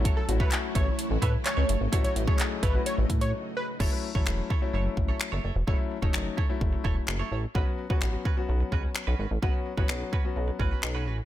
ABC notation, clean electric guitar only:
X:1
M:4/4
L:1/16
Q:1/4=128
K:F#dor
V:1 name="Clean electric guitar"
[EAc] z2 [EAc] z2 [EAc] z3 [EAc] z2 [EAc] [EAc] z | [EAc] z2 [EAc] z2 [EAc] z8 z | [EAc] z2 [EAc] z2 [EAc] z [EAc] z2 [EAc] z [EAc] [EAc] z | [EAc] z2 [EAc] z2 [EAc] z3 [EAc] z2 [EAc] [EAc] z |
[CFB] z2 [CFB] z2 [CFB] z3 [CFB] z2 [CFB] [CFB] z | [CFB] z2 [CFB] z2 [CFB] z3 [CFB] [CFB] z [CFB] [CFB] z |]